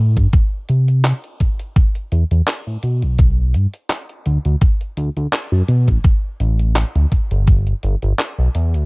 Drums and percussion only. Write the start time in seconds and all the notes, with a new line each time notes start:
0.17 kick, closed hi-hat
0.33 kick, closed hi-hat
0.69 closed hi-hat
0.88 closed hi-hat
1.04 clap, closed hi-hat
1.24 closed hi-hat
1.40 kick, closed hi-hat
1.59 closed hi-hat
1.76 kick, closed hi-hat
1.95 closed hi-hat
2.12 closed hi-hat
2.31 closed hi-hat
2.47 clap, closed hi-hat
2.83 closed hi-hat
3.02 closed hi-hat
3.19 kick, closed hi-hat
3.54 closed hi-hat
3.74 closed hi-hat
3.90 clap, closed hi-hat
4.09 closed hi-hat
4.26 closed hi-hat
4.45 closed hi-hat
4.61 kick, closed hi-hat
4.81 closed hi-hat
4.97 closed hi-hat
5.17 closed hi-hat
5.33 clap, closed hi-hat
5.68 closed hi-hat
5.88 kick, closed hi-hat
6.04 kick, closed hi-hat
6.40 closed hi-hat
6.59 closed hi-hat
6.76 clap, closed hi-hat
6.95 closed hi-hat
7.12 kick, closed hi-hat
7.31 closed hi-hat
7.47 kick, closed hi-hat
7.67 closed hi-hat
7.83 closed hi-hat
8.02 closed hi-hat
8.19 clap, closed hi-hat
8.55 closed hi-hat
8.74 closed hi-hat